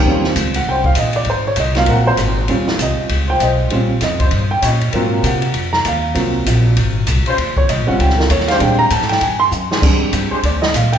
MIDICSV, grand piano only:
0, 0, Header, 1, 2, 480
1, 0, Start_track
1, 0, Tempo, 305344
1, 71, Time_signature, 4, 2, 24, 8
1, 17261, End_track
2, 0, Start_track
2, 0, Title_t, "Grand piano"
2, 0, Program_c, 0, 0
2, 0, Note_on_c, 0, 39, 53
2, 0, Note_on_c, 0, 53, 53
2, 0, Note_on_c, 0, 58, 54
2, 0, Note_on_c, 0, 67, 68
2, 98, Note_on_c, 0, 55, 50
2, 100, Note_on_c, 0, 60, 47
2, 119, Note_on_c, 0, 61, 47
2, 124, Note_on_c, 0, 65, 53
2, 515, Note_off_c, 0, 39, 0
2, 515, Note_off_c, 0, 53, 0
2, 517, Note_off_c, 0, 58, 0
2, 520, Note_off_c, 0, 67, 0
2, 881, Note_on_c, 0, 78, 78
2, 1043, Note_off_c, 0, 78, 0
2, 1081, Note_on_c, 0, 79, 85
2, 1341, Note_off_c, 0, 79, 0
2, 1350, Note_on_c, 0, 77, 87
2, 1517, Note_off_c, 0, 77, 0
2, 1553, Note_on_c, 0, 75, 69
2, 1817, Note_off_c, 0, 75, 0
2, 1825, Note_on_c, 0, 74, 80
2, 1940, Note_off_c, 0, 55, 0
2, 1941, Note_off_c, 0, 60, 0
2, 1951, Note_off_c, 0, 61, 0
2, 1953, Note_off_c, 0, 65, 0
2, 1995, Note_off_c, 0, 74, 0
2, 2040, Note_on_c, 0, 72, 71
2, 2300, Note_off_c, 0, 72, 0
2, 2317, Note_on_c, 0, 73, 83
2, 2481, Note_off_c, 0, 73, 0
2, 2513, Note_on_c, 0, 75, 70
2, 2775, Note_on_c, 0, 54, 57
2, 2777, Note_off_c, 0, 75, 0
2, 2778, Note_on_c, 0, 60, 49
2, 2781, Note_on_c, 0, 58, 50
2, 2787, Note_on_c, 0, 65, 57
2, 2796, Note_on_c, 0, 77, 93
2, 2960, Note_off_c, 0, 77, 0
2, 2983, Note_on_c, 0, 78, 78
2, 3251, Note_off_c, 0, 78, 0
2, 3259, Note_on_c, 0, 72, 87
2, 3366, Note_off_c, 0, 72, 0
2, 3857, Note_off_c, 0, 54, 0
2, 3859, Note_off_c, 0, 60, 0
2, 3860, Note_off_c, 0, 58, 0
2, 3863, Note_off_c, 0, 65, 0
2, 3909, Note_on_c, 0, 55, 52
2, 3916, Note_on_c, 0, 60, 48
2, 3919, Note_on_c, 0, 61, 50
2, 3921, Note_on_c, 0, 65, 58
2, 4438, Note_on_c, 0, 75, 68
2, 5134, Note_off_c, 0, 75, 0
2, 5185, Note_on_c, 0, 79, 102
2, 5354, Note_off_c, 0, 79, 0
2, 5395, Note_on_c, 0, 75, 60
2, 5765, Note_off_c, 0, 55, 0
2, 5768, Note_off_c, 0, 60, 0
2, 5770, Note_off_c, 0, 61, 0
2, 5771, Note_off_c, 0, 65, 0
2, 5838, Note_on_c, 0, 55, 51
2, 5851, Note_on_c, 0, 60, 47
2, 5856, Note_on_c, 0, 61, 46
2, 5858, Note_on_c, 0, 65, 58
2, 6093, Note_off_c, 0, 75, 0
2, 6183, Note_off_c, 0, 55, 0
2, 6190, Note_off_c, 0, 60, 0
2, 6192, Note_off_c, 0, 61, 0
2, 6193, Note_off_c, 0, 65, 0
2, 6348, Note_on_c, 0, 75, 70
2, 7049, Note_off_c, 0, 75, 0
2, 7091, Note_on_c, 0, 79, 97
2, 7267, Note_off_c, 0, 79, 0
2, 7331, Note_on_c, 0, 75, 54
2, 7768, Note_on_c, 0, 58, 44
2, 7770, Note_on_c, 0, 54, 54
2, 7781, Note_on_c, 0, 60, 45
2, 7799, Note_on_c, 0, 65, 57
2, 8022, Note_off_c, 0, 75, 0
2, 8275, Note_on_c, 0, 78, 64
2, 8494, Note_off_c, 0, 58, 0
2, 8495, Note_off_c, 0, 54, 0
2, 8501, Note_off_c, 0, 60, 0
2, 8510, Note_off_c, 0, 65, 0
2, 8973, Note_off_c, 0, 78, 0
2, 9004, Note_on_c, 0, 82, 99
2, 9184, Note_off_c, 0, 82, 0
2, 9235, Note_on_c, 0, 77, 69
2, 9662, Note_on_c, 0, 54, 53
2, 9669, Note_on_c, 0, 60, 49
2, 9670, Note_on_c, 0, 58, 51
2, 9685, Note_on_c, 0, 65, 52
2, 9934, Note_off_c, 0, 77, 0
2, 11524, Note_off_c, 0, 54, 0
2, 11528, Note_off_c, 0, 58, 0
2, 11528, Note_off_c, 0, 60, 0
2, 11536, Note_off_c, 0, 65, 0
2, 11908, Note_on_c, 0, 73, 85
2, 12077, Note_off_c, 0, 73, 0
2, 12094, Note_on_c, 0, 75, 65
2, 12369, Note_off_c, 0, 75, 0
2, 12371, Note_on_c, 0, 60, 56
2, 12372, Note_on_c, 0, 55, 59
2, 12381, Note_on_c, 0, 61, 52
2, 12390, Note_on_c, 0, 78, 81
2, 12392, Note_on_c, 0, 65, 59
2, 12558, Note_off_c, 0, 78, 0
2, 12585, Note_on_c, 0, 79, 86
2, 12854, Note_off_c, 0, 79, 0
2, 12859, Note_on_c, 0, 70, 69
2, 13001, Note_off_c, 0, 60, 0
2, 13002, Note_off_c, 0, 55, 0
2, 13006, Note_off_c, 0, 61, 0
2, 13012, Note_off_c, 0, 65, 0
2, 13033, Note_off_c, 0, 70, 0
2, 13067, Note_on_c, 0, 73, 75
2, 13334, Note_on_c, 0, 77, 93
2, 13335, Note_off_c, 0, 73, 0
2, 13499, Note_on_c, 0, 55, 52
2, 13508, Note_on_c, 0, 56, 48
2, 13511, Note_off_c, 0, 77, 0
2, 13517, Note_on_c, 0, 60, 43
2, 13518, Note_on_c, 0, 62, 59
2, 13546, Note_on_c, 0, 79, 85
2, 13812, Note_on_c, 0, 82, 114
2, 13814, Note_off_c, 0, 79, 0
2, 13855, Note_off_c, 0, 55, 0
2, 13860, Note_off_c, 0, 56, 0
2, 13865, Note_off_c, 0, 60, 0
2, 13865, Note_off_c, 0, 62, 0
2, 13989, Note_off_c, 0, 82, 0
2, 14028, Note_on_c, 0, 81, 75
2, 14295, Note_off_c, 0, 81, 0
2, 14295, Note_on_c, 0, 79, 89
2, 14471, Note_off_c, 0, 79, 0
2, 14510, Note_on_c, 0, 80, 76
2, 14770, Note_on_c, 0, 84, 103
2, 14776, Note_off_c, 0, 80, 0
2, 14880, Note_off_c, 0, 84, 0
2, 15434, Note_on_c, 0, 55, 51
2, 15440, Note_on_c, 0, 60, 47
2, 15442, Note_on_c, 0, 56, 49
2, 15442, Note_on_c, 0, 62, 54
2, 16433, Note_on_c, 0, 74, 71
2, 16694, Note_on_c, 0, 75, 82
2, 16697, Note_off_c, 0, 74, 0
2, 16869, Note_off_c, 0, 75, 0
2, 16920, Note_on_c, 0, 77, 67
2, 17175, Note_on_c, 0, 79, 91
2, 17180, Note_off_c, 0, 77, 0
2, 17261, Note_off_c, 0, 55, 0
2, 17261, Note_off_c, 0, 56, 0
2, 17261, Note_off_c, 0, 60, 0
2, 17261, Note_off_c, 0, 62, 0
2, 17261, Note_off_c, 0, 79, 0
2, 17261, End_track
0, 0, End_of_file